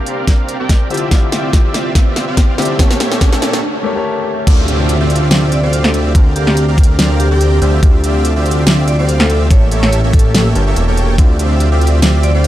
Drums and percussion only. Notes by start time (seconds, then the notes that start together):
0.06 closed hi-hat
0.27 kick, snare, closed hi-hat
0.48 closed hi-hat
0.69 kick, snare, closed hi-hat
0.90 closed hi-hat
0.94 closed hi-hat
0.97 closed hi-hat
1.11 kick, snare, closed hi-hat
1.32 snare, closed hi-hat
1.53 kick, snare, closed hi-hat
1.74 snare, closed hi-hat
1.95 kick, snare, closed hi-hat
2.16 snare, closed hi-hat
2.37 kick, snare, closed hi-hat
2.58 snare, closed hi-hat
2.62 closed hi-hat
2.65 closed hi-hat
2.79 kick, snare, closed hi-hat
2.91 snare
3.00 snare, closed hi-hat
3.12 snare
3.21 kick, snare, closed hi-hat
3.33 snare
3.42 snare, closed hi-hat
3.53 snare
4.47 kick, closed hi-hat, crash
4.68 closed hi-hat
4.89 closed hi-hat
5.10 closed hi-hat
5.16 closed hi-hat
5.31 snare, closed hi-hat
5.52 closed hi-hat
5.73 closed hi-hat
5.84 snare
5.94 closed hi-hat
6.15 kick, closed hi-hat
6.36 closed hi-hat
6.47 snare
6.57 closed hi-hat
6.78 kick, closed hi-hat
6.83 closed hi-hat
6.99 snare, closed hi-hat
7.20 closed hi-hat
7.41 closed hi-hat
7.62 closed hi-hat
7.83 kick, closed hi-hat
8.04 closed hi-hat
8.25 closed hi-hat
8.46 closed hi-hat
8.51 closed hi-hat
8.67 snare, closed hi-hat
8.88 closed hi-hat
9.09 closed hi-hat
9.20 snare
9.30 closed hi-hat
9.51 kick, closed hi-hat
9.72 closed hi-hat
9.83 snare
9.93 closed hi-hat
10.13 kick, closed hi-hat
10.19 closed hi-hat
10.35 snare, closed hi-hat
10.55 closed hi-hat
10.76 closed hi-hat
10.97 closed hi-hat
11.18 kick, closed hi-hat, ride
11.39 closed hi-hat
11.60 closed hi-hat
11.81 closed hi-hat
11.87 closed hi-hat
12.02 snare, closed hi-hat
12.23 closed hi-hat
12.44 closed hi-hat